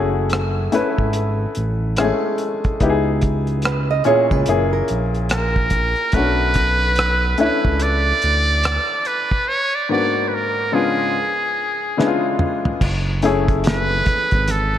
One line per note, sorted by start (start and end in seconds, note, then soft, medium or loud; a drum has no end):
0.00 0.69 F#1 loud
0.00 0.70 A3 medium
0.00 0.71 C#4 medium
0.00 0.72 E4 medium
0.00 2.83 F#4 medium
0.00 1.12 G#4 medium
0.30 cross-stick loud
0.30 closed hi-hat medium
0.72 0.84 G#1 soft
0.72 1.91 A3 medium
0.72 1.91 C#4 medium
0.72 1.92 E4 medium
0.72 1.92 B4 medium
0.72 closed hi-hat medium
0.98 1.46 G#1 medium
0.98 kick medium
1.13 closed hi-hat medium
1.55 2.12 A1 medium
1.55 closed hi-hat medium
1.96 2.06 G#3 medium
1.96 2.60 C#4 medium
1.96 2.61 E4 medium
1.96 2.61 G#4 medium
1.96 cross-stick loud
1.96 closed hi-hat medium
2.04 2.63 A3 medium
2.38 closed hi-hat medium
2.64 kick medium
2.64 closed hi-hat soft
2.80 4.02 C#2 medium
2.80 3.99 B3 medium
2.80 4.00 D#4 medium
2.80 4.00 E4 medium
2.80 2.90 G4 medium
2.80 kick loud
2.80 closed hi-hat medium
2.90 4.04 G#4 medium
3.22 kick medium
3.22 closed hi-hat medium
3.47 closed hi-hat soft
3.62 3.89 B4 medium
3.62 cross-stick loud
3.62 closed hi-hat medium
3.91 4.06 D#5 medium
4.04 4.17 C#2 soft
4.04 4.68 A#2 medium
4.04 4.47 C#4 medium
4.04 4.47 E4 medium
4.04 4.48 G#4 medium
4.04 4.31 C#5 medium
4.04 closed hi-hat medium
4.31 4.45 C#2 medium
4.31 4.71 B4 medium
4.31 kick medium
4.46 4.82 F#1 medium
4.46 5.00 A#3 medium
4.46 5.00 C#4 medium
4.46 5.00 E4 medium
4.46 5.01 G#4 medium
4.46 closed hi-hat medium
4.73 5.94 A#4 medium
4.88 5.95 A#1 medium
4.88 closed hi-hat medium
5.15 closed hi-hat soft
5.29 6.16 A#4 medium
5.29 cross-stick loud
5.29 closed hi-hat medium
5.56 kick medium
5.70 kick medium
5.70 closed hi-hat medium
5.96 closed hi-hat soft
6.12 7.35 B1 loud
6.12 6.46 A3 medium
6.12 6.47 C#4 medium
6.12 6.47 D4 medium
6.12 7.39 B4 loud
6.12 kick medium
6.12 closed hi-hat medium
6.16 6.47 F#4 medium
6.54 kick medium
6.54 closed hi-hat medium
6.95 cross-stick loud
6.95 closed hi-hat medium
7.38 7.50 C#2 soft
7.38 8.01 A3 medium
7.38 8.01 C#4 medium
7.38 8.02 D4 medium
7.38 8.02 E4 medium
7.38 7.84 B4 medium
7.38 closed hi-hat medium
7.65 8.13 C#2 medium
7.65 kick medium
7.80 9.08 D5 loud
7.80 closed hi-hat medium
8.22 8.79 D2 medium
8.22 closed hi-hat medium
8.63 cross-stick loud
8.63 closed hi-hat medium
9.05 9.50 B4 medium
9.05 closed hi-hat medium
9.31 kick medium
9.48 9.77 C#5 medium
9.75 9.90 D5 medium
9.89 11.08 G#2 medium
9.89 11.08 A#3 medium
9.89 10.72 B3 medium
9.89 10.73 D4 medium
9.89 11.09 F#4 medium
9.89 10.30 D5 medium
10.28 10.36 B4 medium
10.34 10.76 A#4 medium
10.72 11.04 C#3 medium
10.72 11.05 G#3 medium
10.72 11.05 B3 medium
10.72 11.05 D4 medium
10.72 11.06 F4 medium
10.72 12.40 G#4 medium
11.97 12.81 C#3 medium
11.97 12.81 G#3 medium
11.97 12.82 B3 medium
11.97 12.82 D4 medium
11.97 12.07 E4 medium
11.97 snare medium
12.07 12.86 F4 medium
12.39 mid tom medium
12.65 floor tom medium
12.81 14.02 F#1 loud
12.81 kick loud
12.81 crash loud
12.81 muted conga soft
13.22 13.85 A3 medium
13.22 13.85 C#4 medium
13.22 13.86 E4 medium
13.22 13.86 G#4 medium
13.22 closed hi-hat medium
13.48 kick loud
13.48 closed hi-hat soft
13.64 14.52 B4 medium
13.64 snare loud
13.64 closed hi-hat medium
14.06 14.17 G#1 soft
14.06 kick medium
14.06 closed hi-hat medium
14.06 high conga medium
14.06 low conga medium
14.31 14.78 G#1 loud
14.31 kick loud
14.31 closed hi-hat soft
14.48 14.78 A4 medium
14.48 closed hi-hat loud
14.48 high conga medium
14.74 muted conga soft